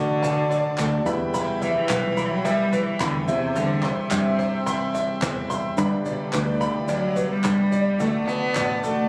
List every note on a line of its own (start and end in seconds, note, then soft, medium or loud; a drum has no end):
0.00 0.56 A1 loud
0.00 1.03 D2 medium
0.00 1.03 D3 medium
0.00 1.06 D3 loud
0.00 1.02 F#3 medium
0.00 0.22 A3 soft
0.00 1.03 A3 medium
0.00 0.23 D4 medium
0.00 1.03 D4 medium
0.00 0.23 F#4 medium
0.00 1.04 F#4 medium
0.00 0.77 A4 medium
0.00 1.03 A4 medium
0.00 0.49 D5 medium
0.00 1.03 D5 medium
0.00 1.04 D5 medium
0.00 0.21 A5 medium
0.00 1.05 A5 medium
0.23 0.51 D3 medium
0.23 0.51 A3 medium
0.23 0.50 D4 medium
0.23 0.48 F#4 medium
0.23 1.06 A5 medium
0.23 cajon bass loud
0.23 shaker medium
0.49 0.78 A3 soft
0.49 0.79 D4 medium
0.49 0.78 F#4 medium
0.49 1.06 D5 medium
0.49 cajon bass medium
0.49 shaker medium
0.78 1.01 D2 medium
0.78 1.06 D3 medium
0.78 1.07 A3 medium
0.78 1.07 D4 medium
0.78 1.05 F#4 medium
0.78 1.06 A4 medium
0.78 1.05 A5 medium
0.78 cajon bass loud
0.78 cajon slap loud
0.78 clap medium
0.78 shaker medium
1.05 1.72 E2 loud
1.05 3.24 E2 medium
1.05 3.24 E3 medium
1.05 1.34 E3 soft
1.05 3.23 G3 medium
1.05 1.35 G3 soft
1.05 3.24 B3 medium
1.05 1.35 B3 medium
1.05 1.34 E4 medium
1.05 3.24 E4 medium
1.05 3.24 B4 medium
1.05 3.24 E5 medium
1.05 5.74 E5 medium
1.05 7.97 G5 medium
1.05 1.33 B5 medium
1.05 3.26 B5 medium
1.05 cajon bass medium
1.05 shaker medium
1.34 1.62 E2 medium
1.34 1.62 B2 medium
1.34 1.63 E3 medium
1.34 1.63 G3 loud
1.34 1.63 B3 medium
1.34 1.61 E4 medium
1.34 2.16 B5 loud
1.34 cajon bass loud
1.34 shaker loud
1.62 1.75 E3 loud
1.62 1.90 G3 soft
1.62 1.91 B3 soft
1.62 1.90 E4 medium
1.62 2.43 E5 medium
1.62 cajon bass medium
1.62 shaker medium
1.66 1.88 E3 soft
1.76 2.32 E3 medium
1.89 2.77 B1 loud
1.89 2.17 E3 medium
1.89 2.17 G3 medium
1.89 2.16 B3 medium
1.89 2.15 E4 medium
1.89 2.71 B4 medium
1.89 cajon bass medium
1.89 cajon bass loud
1.89 cajon slap loud
1.89 clap medium
1.89 shaker medium
2.16 2.45 E3 soft
2.16 2.45 G3 soft
2.16 2.45 B3 soft
2.16 2.45 E4 medium
2.16 2.99 B5 medium
2.16 cajon bass medium
2.16 shaker medium
2.31 2.47 F#3 loud
2.45 2.73 E2 medium
2.45 2.73 B2 medium
2.45 2.73 E3 medium
2.45 2.75 G3 loud
2.45 2.73 G3 medium
2.45 2.73 B3 medium
2.45 2.72 E4 medium
2.45 3.27 E5 medium
2.45 cajon bass medium
2.45 cajon bass loud
2.45 shaker medium
2.73 3.03 E3 loud
2.73 2.98 E3 soft
2.73 3.00 G3 soft
2.73 3.01 B3 soft
2.73 3.01 E4 medium
2.73 3.28 B4 medium
2.73 cajon bass medium
2.73 shaker medium
3.00 3.22 E2 loud
3.00 3.28 D3 loud
3.00 3.28 E3 medium
3.00 3.28 G3 medium
3.00 3.29 B3 medium
3.00 3.26 E4 medium
3.00 3.28 B5 medium
3.00 cajon bass loud
3.00 cajon slap loud
3.00 clap medium
3.00 shaker medium
3.28 3.94 E2 medium
3.28 5.46 E2 medium
3.28 3.59 C3 loud
3.28 5.46 E3 medium
3.28 5.46 G3 medium
3.28 3.55 G3 soft
3.28 5.46 C4 medium
3.28 3.56 C4 soft
3.28 3.56 E4 medium
3.28 5.46 E4 medium
3.28 5.47 C5 medium
3.28 4.10 E5 medium
3.28 5.47 E5 medium
3.28 5.76 C6 medium
3.28 cajon bass medium
3.28 shaker medium
3.55 3.85 D3 loud
3.55 3.83 E3 medium
3.55 3.84 G3 medium
3.55 3.84 C4 medium
3.55 3.82 E4 medium
3.55 4.37 C5 medium
3.55 cajon bass medium
3.55 cajon bass loud
3.55 shaker medium
3.83 4.95 C3 medium
3.83 4.11 G3 soft
3.83 4.12 C4 medium
3.83 4.11 E4 medium
3.83 4.65 C6 loud
3.83 cajon bass medium
3.83 clap medium
4.11 4.99 G2 loud
4.11 4.39 E3 medium
4.11 4.40 G3 medium
4.11 4.40 C4 medium
4.11 4.38 E4 medium
4.11 4.93 E5 medium
4.11 cajon bass loud
4.11 cajon slap loud
4.11 clap loud
4.11 shaker medium
4.39 4.67 G3 soft
4.39 4.67 C4 medium
4.39 4.67 E4 soft
4.39 5.21 C5 medium
4.39 cajon bass medium
4.66 4.95 E3 medium
4.66 4.95 G3 medium
4.66 4.94 C4 medium
4.66 4.93 E4 loud
4.66 5.49 C6 medium
4.66 cajon bass loud
4.66 shaker medium
4.94 5.21 G3 soft
4.94 5.22 C4 soft
4.94 5.22 E4 medium
4.94 5.78 E5 medium
4.94 cajon bass medium
4.94 shaker medium
5.22 5.66 E2 medium
5.22 5.50 E3 medium
5.22 5.50 G3 medium
5.22 5.50 C4 medium
5.22 5.49 E4 medium
5.22 5.78 C5 medium
5.22 cajon bass loud
5.22 cajon slap loud
5.22 clap medium
5.22 shaker medium
5.50 5.77 G3 soft
5.50 5.78 C4 soft
5.50 5.78 E4 medium
5.50 5.78 C6 medium
5.50 cajon bass medium
5.50 shaker medium
5.77 7.96 G1 medium
5.77 6.05 G2 medium
5.77 7.96 G2 medium
5.77 6.00 G2 medium
5.77 7.96 D3 medium
5.77 6.05 D3 loud
5.77 6.06 G3 medium
5.77 7.96 B3 medium
5.77 6.06 B3 loud
5.77 7.96 D4 medium
5.77 6.05 D4 medium
5.77 6.04 G4 medium
5.77 7.96 B4 medium
5.77 9.09 D5 medium
5.77 7.97 D5 medium
5.77 6.60 B5 medium
5.77 7.98 B5 medium
5.77 cajon bass loud
5.77 cajon bass medium
5.77 shaker medium
6.05 6.20 B2 medium
6.05 6.31 G3 soft
6.05 6.32 B3 soft
6.05 6.34 D4 soft
6.05 6.33 G4 medium
6.05 6.87 D5 medium
6.05 cajon bass medium
6.05 shaker medium
6.20 6.46 D3 medium
6.33 7.22 D2 loud
6.33 6.61 G3 medium
6.33 6.61 B3 medium
6.33 6.61 D4 medium
6.33 6.59 G4 medium
6.33 7.15 B4 medium
6.33 cajon bass loud
6.33 cajon slap loud
6.33 clap loud
6.33 shaker medium
6.49 6.79 D3 medium
6.60 6.88 G3 soft
6.60 6.89 B3 medium
6.60 6.89 D4 medium
6.60 6.89 G4 medium
6.60 7.43 B5 medium
6.60 cajon bass medium
6.60 shaker medium
6.78 6.90 E3 medium
6.88 7.17 G2 medium
6.88 7.17 D3 medium
6.88 7.33 F#3 loud
6.88 7.17 G3 medium
6.88 7.17 B3 medium
6.88 7.16 D4 medium
6.88 7.15 G4 medium
6.88 7.71 D5 medium
6.88 cajon bass medium
6.88 cajon bass loud
6.88 shaker medium
7.16 7.44 G3 soft
7.16 7.45 B3 medium
7.16 7.45 D4 soft
7.16 7.44 G4 medium
7.16 8.00 B4 medium
7.16 cajon bass medium
7.16 shaker medium
7.32 8.02 G3 loud
7.44 7.89 G2 loud
7.44 7.73 G3 medium
7.44 7.73 B3 medium
7.44 7.71 D4 medium
7.44 7.70 G4 medium
7.44 8.00 B5 medium
7.44 cajon bass loud
7.44 cajon slap loud
7.44 clap medium
7.44 shaker loud
7.72 7.99 G3 soft
7.72 8.00 B3 soft
7.72 8.00 D4 medium
7.72 8.00 G4 medium
7.72 8.00 D5 medium
7.72 cajon bass medium
7.72 shaker medium
7.98 9.09 D2 medium
7.98 8.22 D2 loud
7.98 8.28 D3 medium
7.98 9.09 D3 medium
7.98 9.09 F#3 medium
7.98 9.09 A3 medium
7.98 8.29 A3 loud
7.98 8.28 A3 medium
7.98 9.09 D4 medium
7.98 8.27 D4 medium
7.98 9.09 F#4 medium
7.98 8.25 F#4 medium
7.98 8.82 A4 medium
7.98 9.09 A4 medium
7.98 9.09 D5 medium
7.98 9.09 A5 medium
7.98 cajon bass medium
7.98 cajon bass loud
7.98 shaker loud
8.27 8.55 A3 soft
8.27 8.85 B3 loud
8.27 8.56 D4 soft
8.27 8.55 F#4 medium
8.27 9.09 A5 medium
8.27 cajon bass medium
8.27 shaker medium
8.55 9.09 A1 loud
8.55 8.83 D3 medium
8.55 8.83 A3 medium
8.55 8.82 D4 medium
8.55 8.81 F#4 medium
8.55 9.09 D5 medium
8.55 cajon bass loud
8.55 cajon slap loud
8.55 clap loud
8.55 shaker loud
8.82 9.09 A3 loud
8.82 9.09 A3 soft
8.82 9.09 D4 medium
8.82 9.09 F#4 medium
8.82 9.09 A4 medium
8.82 cajon bass medium
8.82 shaker medium